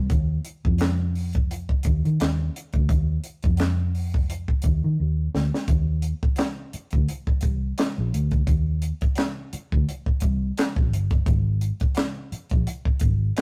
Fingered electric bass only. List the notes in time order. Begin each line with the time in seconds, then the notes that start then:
0.11 D#2
0.66 F2
1.86 D#2
2.05 D#3
2.21 D#2
2.74 D2
2.90 D#2
3.45 F2
4.65 D#2
4.84 D#3
5.00 D#2
5.34 D2
5.69 D#2
6.24 muted fingered electric bass stroke
6.74 muted fingered electric bass stroke
6.94 D2
7.44 C2
7.98 A#1
8.14 D2
8.48 D#2
9.03 muted fingered electric bass stroke
9.53 muted fingered electric bass stroke
9.73 D2
10.23 C2
10.77 A#1
10.92 G1
11.27 G#1
11.82 muted fingered electric bass stroke
12.32 muted fingered electric bass stroke
12.52 A#1
12.86 muted fingered electric bass stroke
13.02 G#1